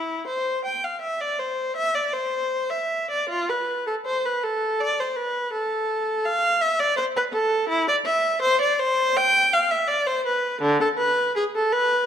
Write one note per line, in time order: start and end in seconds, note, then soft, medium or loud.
0.00 0.25 E4 medium
0.27 0.64 C5 medium
0.65 0.83 G5 medium
0.84 1.02 F5 medium
1.01 1.20 E5 medium
1.21 1.39 D5 medium
1.39 1.77 C5 medium
1.76 1.95 E5 loud
1.95 2.14 D5 medium
2.13 2.71 C5 medium
2.70 3.10 E5 medium
3.10 3.30 D5 medium
3.29 3.49 F4 loud
3.49 3.88 B4 medium
3.87 3.95 A4 medium
4.06 4.24 C5 medium
4.25 4.44 B4 medium
4.44 4.81 A4 medium
4.80 4.99 D5 loud
5.00 5.18 C5 medium
5.16 5.53 B4 medium
5.53 6.24 A4 medium
6.25 6.62 F5 loud
6.61 6.80 E5 loud
6.80 6.98 D5 loud
6.97 7.04 C5 loud
7.17 7.24 B4 loud
7.33 7.69 A4 medium
7.69 7.87 E4 loud
7.88 7.95 D5 loud
8.06 8.41 E5 loud
8.42 8.60 C5 loud
8.61 8.79 D5 medium
8.79 9.16 C5 loud
9.17 9.53 G5 loud
9.53 9.71 F5 loud
9.71 9.89 E5 medium
9.88 10.06 D5 loud
10.07 10.25 C5 loud
10.26 10.61 B4 medium
10.61 10.79 D3 loud
10.81 10.88 A4 loud
10.98 11.34 B4 loud
11.36 11.43 G#4 loud
11.55 11.73 A4 medium
11.73 12.06 B4 loud